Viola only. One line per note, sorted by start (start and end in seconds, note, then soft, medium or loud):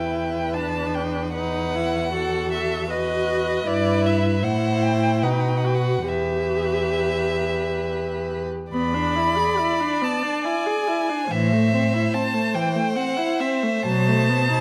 0.00 0.56 E4 soft
0.54 1.34 D4 soft
1.34 1.76 D#4 soft
1.75 2.13 E4 soft
2.13 2.89 F#4 soft
2.89 3.65 F#4 soft
3.67 4.39 E4 medium
4.43 5.25 E4 soft
5.23 5.66 D#4 soft
5.64 6.08 F#4 soft
6.08 8.48 G4 soft
8.74 8.96 B3 soft
8.94 9.17 D4 soft
9.16 9.38 E4 soft
9.37 9.60 G#4 soft
9.58 9.82 E4 soft
9.80 10.03 D4 soft
10.02 10.24 B3 soft
10.23 10.46 D4 soft
10.45 10.68 E4 soft
10.66 10.89 G#4 soft
10.88 11.11 E4 soft
11.10 11.30 D4 soft
11.31 11.54 E3 medium
11.53 11.75 A3 soft
11.73 11.95 C4 soft
11.94 12.15 E4 soft
12.14 12.36 C4 soft
12.34 12.56 A3 soft
12.55 12.77 E3 soft
12.75 12.97 A3 soft
12.96 13.18 C4 soft
13.17 13.42 E4 soft
13.40 13.64 C4 medium
13.63 13.85 A3 soft
13.86 14.09 F#3 medium
14.08 14.30 A3 medium
14.29 14.50 B3 soft
14.49 14.61 D#4 soft